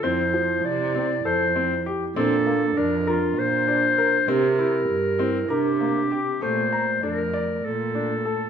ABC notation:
X:1
M:7/8
L:1/8
Q:1/4=99
K:Bblyd
V:1 name="Clarinet"
c2 d2 c2 z | A2 B F c3 | B4 G3 | c2 B2 A3 |]
V:2 name="Grand piano"
C F,2 C A C G | C B, D B2 D B | C E2 C B B, G | A, b D d2 D A |]
V:3 name="Vibraphone"
E6- E | D6- D | G3 E D2 C | A,6- A, |]
V:4 name="Cello" clef=bass
F,,2 C,2 F,,3 | B,,2 F,,2 B,,3 | C,2 G,,2 C,3 | B,,2 F,,2 B,,3 |]